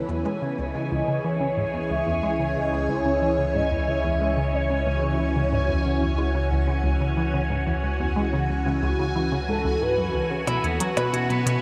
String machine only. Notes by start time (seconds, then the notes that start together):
Already playing: E3 B3 B4
0.16 C#4
0.31 C#5
0.48 G#4
4.85 F#4
10.65 B3
11.03 E5